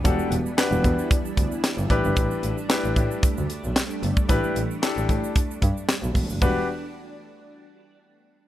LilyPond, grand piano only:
\new Staff \with { instrumentName = "Grand piano" } { \time 4/4 \key e \minor \tempo 4 = 113 <d' fis' g' a'>8 r8 <d' fis' g' b'>4 r4. <d' e' g' b'>8~ | <d' e' g' b'>8 r8 <d' e' g' b'>4 r2 | <d' e' g' b'>8 r8 <d' e' g' a'>4 r2 | <d' fis' g' b'>8 r2. r8 | }